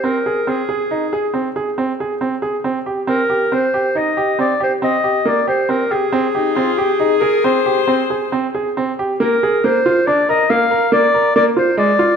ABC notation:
X:1
M:7/4
L:1/8
Q:1/4=138
K:Ablyd
V:1 name="Clarinet"
B2 A6 z6 | B2 c2 e2 d c e2 d c B A- | A12 z2 | B2 c2 d e f2 d2 d c d2 |]
V:2 name="Viola"
z12 z2 | z12 z2 | z E F G A B c4 z4 | z12 z2 |]
V:3 name="Grand piano"
C A C A E A C A C A C A C G | C G C G E G C G C G B, G C G | C G C G E A C G C A C A C G | B, A B, F D B B, B B, B B, F A, F |]